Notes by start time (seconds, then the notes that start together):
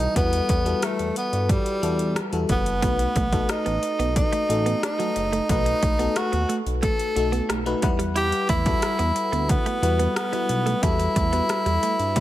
Already playing: G3 D#4 E4 F#4 A4
0.00 closed hi-hat
0.15 E2 G3 B3 E4 F#4 B4, kick, closed hi-hat
0.33 closed hi-hat
0.49 E2, kick, closed hi-hat
0.65 G3 E4 F#4 A4, closed hi-hat
0.82 A3, cross-stick, closed hi-hat
0.99 E2, closed hi-hat
1.16 B3, closed hi-hat
1.33 G2, closed hi-hat
1.49 G3, kick, closed hi-hat
1.66 closed hi-hat
1.82 E2 G3 E4 F#4 A4, closed hi-hat
1.99 closed hi-hat
2.16 cross-stick, closed hi-hat
2.32 E2 G3 E4 F#4 A4, closed hi-hat
2.49 F#1 B3, kick, closed hi-hat
2.66 closed hi-hat
2.82 B1 A3 B3 D#4 F#4 B4, kick, closed hi-hat
2.99 muted clean electric guitar stroke, closed hi-hat
3.16 B1 A3, kick, closed hi-hat
3.32 A3 D#4 F#4 A4, kick, closed hi-hat
3.49 D#4, cross-stick, closed hi-hat
3.66 A1 B3, closed hi-hat
3.83 muted clean electric guitar stroke, closed hi-hat
3.99 B1 B3, closed hi-hat
4.16 D#4, kick, closed hi-hat
4.32 A3, closed hi-hat
4.49 A1 A3 D#4 F#4 A4, muted clean electric guitar stroke, closed hi-hat
4.66 B3, closed hi-hat
4.83 D#4, cross-stick, closed hi-hat
4.99 F#3 A3 D#4 F#4 A4, closed hi-hat
5.16 F#1, muted clean electric guitar stroke, closed hi-hat
5.33 A3, closed hi-hat
5.49 B1 A3 D#4 F#4 B4, kick, closed hi-hat
5.66 muted clean electric guitar stroke, closed hi-hat
5.83 B1 A3, kick, closed hi-hat
5.99 A3 B3 D#4 F#4 A4, closed hi-hat
6.16 F#4, muted clean electric guitar stroke, cross-stick, closed hi-hat
6.32 D#2 B3, closed hi-hat
6.49 A3, closed hi-hat
6.66 B1, closed hi-hat
6.83 A3 A4, kick, closed hi-hat
6.99 closed hi-hat
7.16 B1 A3 D#4 F#4 A4, muted clean electric guitar stroke, closed hi-hat
7.32 B3, closed hi-hat
7.49 B1 A3, cross-stick, closed hi-hat
7.66 A3 D#4 F#4 B4, closed hi-hat
7.82 E2 G3 E4 B4 F#5, muted clean electric guitar stroke, kick, closed hi-hat
7.99 G3, closed hi-hat
8.16 E4 G4, closed hi-hat
8.32 muted clean electric guitar stroke, closed hi-hat
8.49 E2 A3 E4, kick, closed hi-hat
8.65 G3 E4 F#4 A4, kick, closed hi-hat
8.82 cross-stick, closed hi-hat
8.99 E2 B3, closed hi-hat
9.16 muted clean electric guitar stroke, closed hi-hat
9.32 D2 B3, closed hi-hat
9.49 B3, kick, closed hi-hat
9.66 A3, closed hi-hat
9.82 E2 G3 E4 F#4 B4, muted clean electric guitar stroke, closed hi-hat
9.99 B3, closed hi-hat
10.16 B3, cross-stick, closed hi-hat
10.32 G3 E4 F#4 B4, closed hi-hat
10.49 B1, muted clean electric guitar stroke, closed hi-hat
10.66 A3, closed hi-hat
10.82 E2 G3 E4 F#4 A4, kick, closed hi-hat
10.99 muted clean electric guitar stroke, closed hi-hat
11.16 E2 A3, kick, closed hi-hat
11.33 G3 B3 E4 F#4 B4, closed hi-hat
11.49 muted clean electric guitar stroke, cross-stick, closed hi-hat
11.66 E2 G3, closed hi-hat
11.83 A3, closed hi-hat
11.99 G2, closed hi-hat
12.16 G3, kick, closed hi-hat, high tom